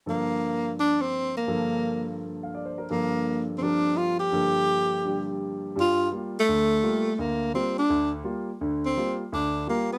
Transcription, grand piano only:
0.06 1.46 G2 soft
0.06 1.46 D3 soft
0.06 1.46 F3 soft
0.06 1.47 A#3 soft
0.06 1.47 A4 soft
1.47 2.88 G2 soft
1.47 2.89 D3 soft
1.47 2.89 F3 soft
1.47 2.89 A#3 soft
1.47 2.89 A4 medium
2.43 2.61 F5 soft
2.55 2.76 D5 soft
2.65 2.84 C5 soft
2.78 2.96 A#4 soft
2.90 4.30 G2 soft
2.90 4.31 D3 soft
2.90 3.59 F3 soft
2.90 4.32 A#3 soft
2.90 4.32 A4 medium
3.61 4.31 F3 soft
3.61 4.33 G3 soft
3.61 4.34 C4 soft
3.61 4.34 A#4 soft
4.32 5.74 G2 soft
4.32 5.02 D3 soft
4.32 5.75 F3 soft
4.32 5.76 A#3 soft
4.32 5.76 A4 medium
5.04 5.75 D3 soft
5.04 5.74 G3 soft
5.04 5.77 G4 soft
5.76 6.07 G2 medium
5.76 6.06 G3 medium
6.11 6.36 G3 soft
6.11 6.36 A#3 soft
6.11 6.36 F4 soft
6.48 6.78 D2 medium
6.83 7.07 G3 soft
6.83 7.07 A#3 soft
6.83 7.07 F4 medium
7.19 7.49 D2 medium
7.54 7.78 G3 soft
7.54 7.78 A#3 soft
7.54 7.79 F4 medium
7.89 8.20 D2 medium
7.89 8.20 D3 medium
8.23 8.49 G3 soft
8.23 8.49 A#3 soft
8.23 8.49 F4 medium
8.61 8.92 D2 medium
8.61 8.92 D3 medium
8.96 9.21 G3 soft
8.96 9.21 A#3 soft
8.96 9.21 F4 soft
9.32 9.63 D2 medium
9.32 9.63 D3 medium
9.67 9.91 G3 medium
9.67 9.92 A#3 soft
9.67 9.92 F4 medium

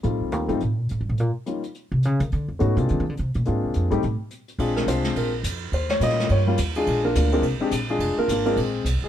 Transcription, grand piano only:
0.03 0.45 G3 soft
0.03 0.45 A3 soft
0.03 0.46 C4 soft
0.03 0.46 D#4 soft
0.03 0.46 F4 soft
0.48 0.59 G3 medium
0.48 0.59 A3 medium
0.48 0.59 C4 medium
0.48 0.59 D#4 medium
0.48 0.59 F4 medium
1.46 1.61 G3 soft
1.46 1.61 A#3 soft
1.46 1.62 C#4 soft
1.46 1.62 D#4 soft
1.46 1.62 F4 soft
2.59 2.75 A3 medium
2.59 2.75 B3 medium
2.59 2.75 C#4 medium
2.59 2.75 D#4 medium
2.59 2.75 F#4 medium
2.77 3.02 G#3 medium
2.77 3.02 A#3 medium
2.77 3.02 C4 medium
2.77 3.03 D4 medium
2.77 3.03 F4 medium
3.46 3.87 G#3 medium
3.46 3.88 A#3 soft
3.46 3.88 C4 soft
3.46 3.88 D4 soft
3.46 3.88 F4 medium
3.91 4.01 G3 medium
3.91 4.01 A3 medium
3.91 4.01 C4 medium
3.91 4.01 D#4 medium
3.91 4.02 G4 medium
4.59 4.86 G#3 medium
4.59 4.86 C4 medium
4.59 4.87 D4 medium
4.59 4.87 F4 medium
4.59 4.76 G#4 medium
4.76 4.87 A#4 medium
4.87 5.29 G#3 medium
4.87 5.30 C4 medium
4.87 5.30 D4 medium
4.87 5.30 F4 medium
4.87 5.14 C5 medium
5.17 5.33 A#4 medium
5.74 5.90 C5 medium
5.91 6.01 C#5 medium
6.01 6.43 G3 medium
6.01 6.44 A#3 medium
6.01 6.44 C#4 medium
6.01 6.44 F4 medium
6.01 6.29 D#5 medium
6.32 6.42 C#5 medium
6.47 6.57 G3 medium
6.47 6.58 A#3 medium
6.47 6.58 C#4 medium
6.47 6.58 F4 medium
6.76 7.03 G#3 medium
6.76 7.03 D4 medium
6.76 7.03 F4 medium
6.76 7.02 G#4 medium
7.05 7.15 A#3 medium
7.05 7.15 D4 medium
7.05 7.16 F4 medium
7.05 7.15 A#4 medium
7.17 7.32 A#3 medium
7.17 7.32 D4 medium
7.17 7.32 F4 medium
7.17 7.32 A#4 medium
7.32 7.43 G#3 medium
7.32 7.44 A#3 medium
7.32 7.43 C4 medium
7.32 7.43 D4 medium
7.32 7.44 F4 medium
7.32 7.44 A#4 medium
7.60 7.71 G#3 medium
7.60 7.71 C4 medium
7.60 7.71 D4 medium
7.60 7.72 G4 medium
7.90 8.16 G#3 medium
7.90 8.17 D4 medium
7.90 8.16 F4 medium
7.90 8.16 G#4 medium
8.18 8.30 A#3 medium
8.18 8.29 D4 medium
8.18 8.29 F4 medium
8.18 8.29 A#4 medium
8.31 8.44 A#3 medium
8.31 8.45 D4 medium
8.31 8.45 F4 medium
8.31 8.44 A#4 medium
8.46 8.84 G#3 medium
8.46 8.57 A#3 medium
8.46 8.84 C4 medium
8.46 8.57 D4 medium
8.46 8.57 F4 medium
8.46 8.57 A#4 medium
9.04 9.09 G#3 medium
9.04 9.09 G#4 medium

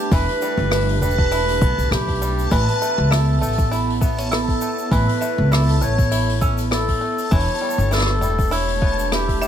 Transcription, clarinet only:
0.00 0.14 G4 medium
0.12 1.01 B4 loud
1.01 1.93 B4 loud
1.91 2.53 G4 loud
2.51 3.13 B4 loud
3.11 3.41 A4 loud
3.41 3.97 A4 medium
4.33 4.94 A4 medium
4.92 5.53 B4 loud
5.52 5.84 A4 medium
5.82 6.42 C#5 loud
6.73 7.34 A4 loud
7.32 7.95 C#5 loud
7.93 8.54 A4 loud
8.52 9.14 C#5 loud
9.13 9.48 G4 loud

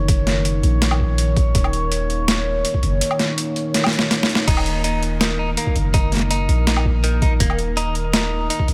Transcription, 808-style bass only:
0.00 0.62 F#1 medium
0.63 1.54 A#1 medium
1.55 2.64 D#1 loud
2.83 3.01 F#1 medium
4.48 5.56 D#1 loud
5.76 6.48 F#1 medium
6.49 7.39 A#1 medium
7.40 8.49 D#1 loud
8.68 8.74 F#1 medium

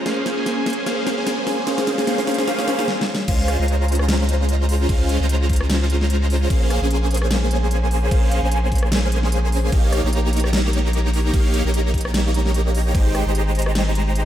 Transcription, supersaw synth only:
0.06 0.35 A#3 medium
0.06 0.34 C#4 medium
0.06 0.35 G#4 medium
0.06 0.35 C5 medium
0.06 0.35 F5 medium
0.37 0.85 A#3 medium
0.37 0.85 C#4 medium
0.37 0.85 G#4 medium
0.37 0.85 C5 medium
0.37 0.85 G#5 medium
0.86 1.15 A#3 loud
0.86 1.15 C#4 medium
0.86 1.15 G#4 medium
0.86 1.15 C5 medium
0.86 1.15 F5 loud
1.18 1.66 A#3 medium
1.18 1.66 C#4 medium
1.18 1.66 G#4 medium
1.18 1.66 C5 medium
1.18 1.66 G#5 medium
1.67 1.96 A#3 medium
1.67 1.96 C#4 medium
1.67 1.96 G#4 medium
1.67 1.96 C5 medium
1.67 1.96 F5 loud
1.98 2.06 A#3 medium
1.98 2.06 C#4 medium
1.98 2.06 G#4 medium
1.98 2.06 C5 medium
1.98 2.06 G#5 medium
2.07 2.36 A#3 loud
2.07 2.36 C#4 medium
2.07 2.36 G#4 medium
2.07 2.36 C5 medium
2.07 2.36 F5 loud
2.39 2.46 A#3 medium
2.39 2.46 C#4 medium
2.39 2.46 G#4 medium
2.39 2.46 C5 medium
2.39 2.46 G#5 medium
2.48 2.66 A#3 loud
2.48 2.66 C#4 medium
2.48 2.66 G#4 medium
2.48 2.66 C5 medium
2.48 2.66 F5 loud
2.68 2.86 A#3 loud
2.68 2.86 C#4 medium
2.68 2.86 G#4 medium
2.68 2.86 C5 medium
2.68 2.86 F5 loud
3.28 3.57 G#3 medium
3.28 3.57 C#4 medium
3.28 3.57 F4 medium
3.28 3.57 C5 medium
3.28 3.57 F5 loud
3.59 4.87 G#3 medium
3.59 4.87 C#4 medium
3.59 4.87 F4 medium
3.59 4.87 C5 medium
3.59 4.87 A#5 medium
4.89 5.18 G#3 loud
4.89 5.18 C#4 medium
4.89 5.18 F4 medium
4.89 5.18 C5 medium
4.89 5.18 F5 loud
5.20 6.48 G#3 medium
5.20 6.48 C#4 medium
5.20 6.48 F4 medium
5.20 6.48 C5 medium
5.20 6.48 A#5 medium
6.50 6.79 A#3 loud
6.50 6.79 C#4 medium
6.50 6.79 G#4 medium
6.50 6.79 C5 medium
6.50 6.79 F5 loud
6.81 8.09 A#3 medium
6.81 8.09 C#4 medium
6.81 8.09 G#4 medium
6.81 8.09 C5 medium
6.81 8.09 G#5 medium
8.11 8.40 A#3 medium
8.11 8.40 C#4 medium
8.11 8.40 G#4 medium
8.11 8.40 C5 medium
8.11 8.40 F5 loud
8.42 9.70 A#3 medium
8.42 9.70 C#4 medium
8.42 9.70 G#4 medium
8.42 9.70 C5 medium
8.42 9.70 G#5 medium
9.72 10.01 A#3 medium
9.72 10.01 D#4 medium
9.72 10.01 G4 medium
9.72 10.01 C#5 medium
9.72 10.01 F5 loud
10.04 11.31 A#3 medium
10.04 11.31 D#4 medium
10.04 11.31 G4 medium
10.04 11.31 C#5 medium
10.04 11.31 A#5 medium
11.34 11.62 A#3 medium
11.34 11.62 D#4 medium
11.34 11.62 G4 medium
11.34 11.62 C#5 medium
11.34 11.62 F5 loud
11.65 12.92 A#3 medium
11.65 12.92 D#4 medium
11.65 12.92 G4 medium
11.65 12.92 C#5 medium
11.65 12.92 A#5 medium
12.95 13.23 G#3 medium
12.95 13.23 D#4 medium
12.95 13.23 G4 medium
12.95 13.23 C5 medium
12.95 13.23 G5 loud
13.26 14.25 G#3 medium
13.26 14.25 D#4 medium
13.26 14.25 G4 medium
13.26 14.25 C5 medium
13.26 14.25 A#5 medium

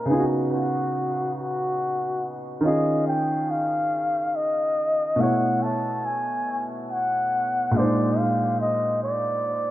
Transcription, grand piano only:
0.05 2.58 C#3 medium
0.05 2.60 B3 medium
0.10 2.61 D#4 soft
0.10 0.17 F4 soft
0.19 2.65 F#4 medium
2.61 5.14 D#3 medium
2.61 5.15 C#4 soft
2.65 5.16 F4 medium
2.65 5.17 G#4 medium
5.16 7.69 B2 medium
5.16 7.70 A3 medium
5.21 7.71 E4 medium
5.21 7.73 C#5 medium
7.71 9.71 A#2 medium
7.71 9.71 G#3 medium
7.76 7.82 D4 soft
7.76 9.71 C5 medium
7.83 9.71 D#4 medium

